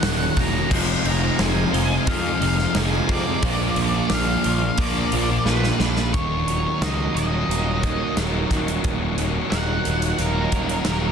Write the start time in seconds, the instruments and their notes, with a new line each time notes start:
Already playing: overdriven electric guitar D#2 A#2 D#3, clean electric guitar A#3 D#4, string machine C#4 F#4 A#4 D#5, lead electric guitar F#5
0.02 picked electric bass D#1, overdriven electric guitar D#2 A#2 D#3 F#3 A#3 D#4, clean electric guitar F#3, snare, open hi-hat
0.35 picked electric bass E1, distorted electric guitar D#2 A#2, overdriven electric guitar D#3 F#3, clean electric guitar A#3, kick, open hi-hat
0.39 overdriven electric guitar A#3 D#4, lead electric guitar A#5
0.52 distorted electric guitar A#2 D#3, overdriven electric guitar D#4
0.56 overdriven electric guitar D#3 F#3 A#3
0.70 picked electric bass F1, overdriven electric guitar F2 C3 F3 G#3 C4 D#4, clean electric guitar F2, string machine D#4 G#4 C5 F5, lead electric guitar C6, kick, crash
1.05 picked electric bass F1, clean electric guitar G#3, lead electric guitar A#5, open hi-hat
1.23 overdriven electric guitar F3 G#3 C4 D#4
1.38 picked electric bass F1, overdriven electric guitar F2 C3 F3 G#3 C4 D#4, clean electric guitar C4, lead electric guitar G#5, snare, open hi-hat
1.54 distorted electric guitar C3 F3
1.72 picked electric bass F1, distorted electric guitar F2 C3, overdriven electric guitar F3 G#3 C4 D#4, clean electric guitar D#4, open hi-hat
1.89 muted overdriven electric guitar stroke, muted distorted electric guitar stroke
2.07 picked electric bass F2, overdriven electric guitar F2 C3 F3, clean electric guitar G#3, lead electric guitar F5, kick, open hi-hat
2.23 distorted electric guitar C3 F3
2.41 picked electric bass F1, distorted electric guitar F2 C3, overdriven electric guitar F3 G#3 C4 D#4, clean electric guitar D#4, open hi-hat
2.58 muted overdriven electric guitar stroke, muted distorted electric guitar stroke, snare
2.73 picked electric bass F1, overdriven electric guitar F2 C3 F3 G#3 C4 D#4, clean electric guitar G#3, snare, open hi-hat
2.78 lead electric guitar G#5
3.08 distorted electric guitar F2 C3, picked electric bass F2, overdriven electric guitar F3 G#3 C4 D#4, clean electric guitar C4, kick, open hi-hat
3.12 distorted electric guitar F3, lead electric guitar D5
3.25 distorted electric guitar C3, overdriven electric guitar F3 G#3 C4 D#4
3.43 picked electric bass A#1, overdriven electric guitar A#2 F3 A#3 D4 F4, clean electric guitar A#2, string machine A#3 D4 F5, kick, open hi-hat
3.76 picked electric bass A#1, clean electric guitar A#3, open hi-hat
3.94 overdriven electric guitar A#3 D4 F4
4.10 picked electric bass A#1, overdriven electric guitar A#2 F3 A#3, clean electric guitar D4, lead electric guitar F5, snare, open hi-hat
4.14 overdriven electric guitar D4 F4
4.26 distorted electric guitar F3 A#3
4.43 picked electric bass A#1, distorted electric guitar A#2, overdriven electric guitar F3 A#3 D4, clean electric guitar F4, open hi-hat
4.48 overdriven electric guitar F4
4.60 muted distorted electric guitar stroke, muted overdriven electric guitar stroke
4.78 picked electric bass A#1, overdriven electric guitar A#2 F3 A#3, clean electric guitar A#3, lead electric guitar D5, kick, open hi-hat
4.94 distorted electric guitar F3 A#3
5.11 picked electric bass A#1, distorted electric guitar A#2, overdriven electric guitar F3 A#3, clean electric guitar F4, open hi-hat
5.15 overdriven electric guitar D4 F4
5.29 muted distorted electric guitar stroke, muted overdriven electric guitar stroke
5.45 picked electric bass A#1, overdriven electric guitar A#2 F3 A#3 D4 F4, clean electric guitar A#3, lead electric guitar B4, snare
5.64 snare
5.79 picked electric bass A#1, distorted electric guitar A#2, overdriven electric guitar F3 A#3 D4 F4, clean electric guitar D4, snare
5.97 distorted electric guitar F3, overdriven electric guitar A#3 D4 F4, snare
6.13 picked electric bass D#1, clean electric guitar D#2, overdriven electric guitar D#2, string machine D#4 A#4 C#5 F#5, lead electric guitar C#5, kick, closed hi-hat
6.48 clean electric guitar D#3, distorted electric guitar D#3, overdriven electric guitar F#3, closed hi-hat
6.81 picked electric bass C#2, clean electric guitar F#3, distorted electric guitar F#3, overdriven electric guitar D#4, lead electric guitar D#5, snare, closed hi-hat
7.15 picked electric bass D#1, clean electric guitar D#3, overdriven electric guitar A#3, lead electric guitar D#5, closed hi-hat
7.48 picked electric bass D#1, distorted electric guitar D#3, clean electric guitar A#3, overdriven electric guitar D#4, closed hi-hat
7.82 clean electric guitar F#3, overdriven electric guitar A#3, kick, closed hi-hat
8.17 picked electric bass D#1, clean electric guitar D#3, overdriven electric guitar F#3, distorted electric guitar D#4, snare, closed hi-hat
8.51 picked electric bass D#1, overdriven electric guitar D#3, clean electric guitar F#3, distorted electric guitar F#3, kick, snare, closed hi-hat
8.68 closed hi-hat
8.84 picked electric bass D#1, clean electric guitar D#2, overdriven electric guitar D#2, kick, closed hi-hat
9.18 clean electric guitar D#3, distorted electric guitar D#3, overdriven electric guitar F#3, closed hi-hat
9.50 picked electric bass D#1, clean electric guitar F#3, distorted electric guitar F#3, overdriven electric guitar D#4, lead electric guitar F#5, snare, closed hi-hat
9.84 picked electric bass D#1, clean electric guitar D#3, overdriven electric guitar A#3, closed hi-hat
10.02 closed hi-hat
10.18 picked electric bass D#1, distorted electric guitar D#3, clean electric guitar A#3, overdriven electric guitar D#4, lead electric guitar A#4, closed hi-hat
10.52 picked electric bass D#1, clean electric guitar F#3, overdriven electric guitar A#3, kick, closed hi-hat
10.69 closed hi-hat
10.85 picked electric bass D#1, clean electric guitar D#3, overdriven electric guitar F#3, distorted electric guitar D#4, snare, closed hi-hat